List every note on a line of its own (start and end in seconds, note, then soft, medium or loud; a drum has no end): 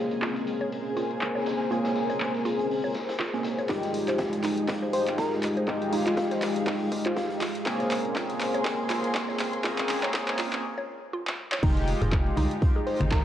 0.00 1.17 G#3 medium
0.00 0.94 A#3 medium
0.00 0.94 C4 medium
0.00 0.94 C#4 medium
0.00 1.17 F4 medium
0.00 0.94 G#4 loud
0.00 3.68 G#4 medium
0.00 3.65 A#4 medium
0.00 3.65 C5 medium
0.00 0.89 D#5 medium
0.00 3.65 G#5 medium
0.06 5.07 A#4 medium
0.11 closed hi-hat soft
0.11 closed hi-hat medium
0.22 0.30 F4 medium
0.22 clap loud
0.22 closed hi-hat medium
0.33 4.31 C5 medium
0.33 closed hi-hat soft
0.47 closed hi-hat medium
0.47 open hi-hat loud
0.61 0.67 C#5 medium
0.61 closed hi-hat medium
0.66 3.69 G#5 medium
0.72 closed hi-hat medium
0.96 1.68 A#3 medium
0.96 1.68 C4 medium
0.96 1.68 C#4 medium
0.96 1.04 F4 medium
0.96 1.69 G#4 medium
0.96 closed hi-hat medium
0.96 open hi-hat loud
1.10 closed hi-hat medium
1.21 clap loud
1.21 closed hi-hat medium
1.35 1.41 C#5 medium
1.35 snare soft
1.46 snare loud
1.46 closed hi-hat medium
1.46 open hi-hat loud
1.60 snare soft
1.60 closed hi-hat medium
1.71 2.92 A#3 loud
1.71 2.92 C4 medium
1.71 2.92 C#4 medium
1.71 1.79 F4 medium
1.71 2.92 G#4 loud
1.71 closed hi-hat medium
1.85 snare loud
1.85 closed hi-hat soft
1.85 closed hi-hat medium
1.95 snare soft
1.95 open hi-hat loud
2.10 2.16 C#5 medium
2.10 closed hi-hat medium
2.20 clap loud
2.20 closed hi-hat medium
2.34 snare soft
2.34 closed hi-hat soft
2.45 2.53 F4 medium
2.45 closed hi-hat medium
2.45 open hi-hat loud
2.59 closed hi-hat medium
2.59 closed hi-hat soft
2.71 open hi-hat medium
2.84 2.90 C#5 medium
2.94 snare medium
2.94 closed hi-hat medium
2.94 open hi-hat loud
3.09 snare medium
3.09 closed hi-hat medium
3.20 3.27 F4 medium
3.20 snare medium
3.20 clap loud
3.20 closed hi-hat medium
3.33 3.67 A#3 medium
3.33 3.67 C4 medium
3.33 3.67 C#4 medium
3.33 3.67 G#4 medium
3.33 closed hi-hat soft
3.43 snare loud
3.43 closed hi-hat medium
3.43 open hi-hat loud
3.58 3.64 C#5 medium
3.58 closed hi-hat medium
3.58 closed hi-hat soft
3.69 4.00 F1 loud
3.69 4.91 G#3 loud
3.69 10.60 G#3 medium
3.69 4.91 D#4 medium
3.69 3.77 D#4 medium
3.69 8.63 D#4 medium
3.69 7.37 F4 medium
3.69 4.91 F4 medium
3.69 4.91 G4 loud
3.69 10.64 G#4 medium
3.69 7.37 D#5 medium
3.69 7.37 G5 medium
3.69 kick loud
3.69 clap soft
3.69 closed hi-hat medium
3.83 8.60 G#3 medium
3.83 snare soft
3.83 closed hi-hat medium
3.94 closed hi-hat medium
3.94 open hi-hat loud
4.08 4.38 F1 loud
4.08 4.14 C5 medium
4.08 clap soft
4.08 closed hi-hat medium
4.08 closed hi-hat soft
4.18 kick loud
4.18 snare loud
4.18 closed hi-hat medium
4.33 closed hi-hat soft
4.33 closed hi-hat medium
4.44 4.53 C2 medium
4.44 4.51 D#4 medium
4.44 clap soft
4.44 closed hi-hat medium
4.44 open hi-hat loud
4.58 closed hi-hat medium
4.68 kick loud
4.68 clap soft
4.68 closed hi-hat medium
4.73 8.92 F5 medium
4.82 4.88 C5 medium
4.93 5.65 G#3 medium
4.93 5.65 D#4 medium
4.93 5.65 F4 medium
4.93 5.65 G4 medium
4.93 5.08 C5 medium
4.93 closed hi-hat medium
4.93 open hi-hat loud
5.07 5.14 G#1 medium
5.07 clap soft
5.07 closed hi-hat medium
5.18 5.26 D#4 medium
5.18 5.33 A#4 medium
5.18 kick loud
5.18 snare loud
5.18 closed hi-hat medium
5.32 snare soft
5.43 clap medium
5.43 closed hi-hat medium
5.43 open hi-hat loud
5.57 5.63 C5 medium
5.57 closed hi-hat medium
5.67 5.99 F1 loud
5.67 6.89 G#3 loud
5.67 6.89 D#4 medium
5.67 6.89 F4 medium
5.67 6.89 G4 loud
5.67 kick loud
5.67 clap medium
5.67 closed hi-hat medium
5.82 closed hi-hat medium
5.92 6.00 D#4 medium
5.92 snare medium
5.92 closed hi-hat medium
5.92 open hi-hat loud
6.06 6.36 F1 loud
6.06 6.13 F4 medium
6.06 clap medium
6.06 closed hi-hat medium
6.17 6.26 F4 medium
6.17 kick loud
6.17 snare loud
6.17 closed hi-hat medium
6.31 6.37 C5 medium
6.31 snare soft
6.31 closed hi-hat medium
6.42 6.51 C2 medium
6.42 clap medium
6.42 closed hi-hat medium
6.42 open hi-hat loud
6.56 closed hi-hat medium
6.56 closed hi-hat soft
6.66 6.75 D#4 medium
6.66 kick loud
6.66 clap medium
6.66 open hi-hat medium
6.91 7.40 G#3 medium
6.91 7.40 D#4 medium
6.91 7.40 F4 medium
6.91 7.40 G4 medium
6.91 kick medium
6.91 closed hi-hat medium
6.91 open hi-hat loud
7.06 7.13 G#1 medium
7.06 7.13 F4 medium
7.06 7.12 C5 medium
7.06 clap medium
7.16 7.25 F4 medium
7.16 kick loud
7.16 snare loud
7.16 closed hi-hat medium
7.30 closed hi-hat soft
7.41 7.49 F4 medium
7.41 10.60 C5 medium
7.41 10.60 A#5 medium
7.41 clap medium
7.41 closed hi-hat medium
7.41 open hi-hat loud
7.55 closed hi-hat medium
7.55 closed hi-hat soft
7.66 7.97 A#1 loud
7.66 8.87 A#3 loud
7.66 8.87 C4 medium
7.66 8.87 C#4 medium
7.66 8.88 G#4 loud
7.66 kick loud
7.66 clap medium
7.66 closed hi-hat medium
7.80 7.86 C#5 medium
7.80 snare soft
7.80 closed hi-hat medium
7.88 10.64 G#5 medium
7.88 clap medium
7.88 closed hi-hat medium
7.88 open hi-hat loud
7.97 10.64 A#4 medium
8.05 8.34 A#1 loud
8.05 closed hi-hat medium
8.05 closed hi-hat soft
8.10 10.64 C6 medium
8.15 8.23 F4 medium
8.15 kick loud
8.15 snare loud
8.15 clap medium
8.15 closed hi-hat medium
8.30 closed hi-hat medium
8.30 closed hi-hat soft
8.40 8.50 F1 medium
8.40 clap medium
8.40 closed hi-hat medium
8.40 open hi-hat loud
8.54 8.60 C#5 medium
8.54 closed hi-hat medium
8.65 kick loud
8.65 clap medium
8.65 closed hi-hat medium
8.90 9.62 A#3 medium
8.90 9.62 C4 medium
8.90 9.62 C#4 medium
8.90 8.98 F4 medium
8.90 9.62 G#4 medium
8.90 snare loud
8.90 clap medium
8.90 closed hi-hat medium
8.90 open hi-hat loud
9.04 9.11 C#2 medium
9.04 closed hi-hat soft
9.04 closed hi-hat medium
9.15 kick loud
9.15 snare loud
9.15 clap medium
9.15 closed hi-hat medium
9.29 9.35 C#5 medium
9.29 snare soft
9.39 clap medium
9.39 closed hi-hat medium
9.39 open hi-hat loud
9.54 closed hi-hat medium
9.64 9.95 A#1 loud
9.64 10.63 A#3 loud
9.64 10.64 C4 medium
9.64 10.64 C#4 medium
9.64 9.72 F4 medium
9.64 10.64 G#4 loud
9.64 kick loud
9.64 clap medium
9.64 closed hi-hat medium
9.78 clap medium
9.78 closed hi-hat soft
9.89 snare soft
9.89 clap loud
9.89 closed hi-hat medium
9.89 open hi-hat loud
10.03 10.33 A#1 loud
10.03 10.09 C#5 medium
10.03 clap medium
10.03 closed hi-hat medium
10.14 kick loud
10.14 snare loud
10.14 clap loud
10.14 closed hi-hat medium
10.28 snare soft
10.28 clap medium
10.28 closed hi-hat medium
10.38 10.46 F4 medium
10.38 clap loud
10.38 closed hi-hat medium
10.38 open hi-hat loud
10.52 clap medium
10.52 closed hi-hat soft
10.52 closed hi-hat medium
10.78 10.83 C#5 medium
11.13 11.21 F4 medium
11.27 clap medium
11.52 11.58 C#5 medium
11.52 clap loud
11.62 11.94 F1 loud
11.62 12.84 G#3 loud
11.62 13.24 G#3 medium
11.62 12.84 D#4 medium
11.62 11.67 D#4 loud
11.62 13.24 D#4 medium
11.62 13.24 F4 medium
11.62 12.84 F4 medium
11.62 12.84 G4 loud
11.62 13.24 D#5 medium
11.62 13.24 G5 medium
11.62 kick loud
11.62 closed hi-hat medium
11.62 crash loud
11.62 high conga medium
11.77 snare soft
11.77 closed hi-hat medium
11.87 closed hi-hat medium
11.87 open hi-hat loud
12.01 12.31 F1 loud
12.01 12.07 G#4 medium
12.01 closed hi-hat soft
12.01 closed hi-hat medium
12.01 low conga medium
12.12 13.24 F5 medium
12.12 kick loud
12.12 snare loud
12.12 clap loud
12.12 closed hi-hat medium
12.26 closed hi-hat soft
12.26 closed hi-hat medium
12.34 12.46 C2 loud
12.34 13.24 G#3 medium
12.34 12.42 D#4 loud
12.34 closed hi-hat medium
12.34 open hi-hat loud
12.34 high conga medium
12.51 13.24 G5 medium
12.51 closed hi-hat medium
12.62 kick loud
12.62 closed hi-hat medium
12.76 12.82 G#4 medium
12.86 13.24 G#3 medium
12.86 13.24 D#4 medium
12.86 13.24 F4 medium
12.86 13.24 G4 medium
12.86 13.01 C5 medium
12.86 closed hi-hat medium
12.86 open hi-hat loud
13.00 13.24 G#1 medium
13.00 finger snap medium
13.00 closed hi-hat medium
13.00 high conga loud
13.11 13.16 D#4 loud
13.11 13.24 A#4 medium
13.11 kick loud
13.11 snare loud
13.11 clap loud
13.11 closed hi-hat medium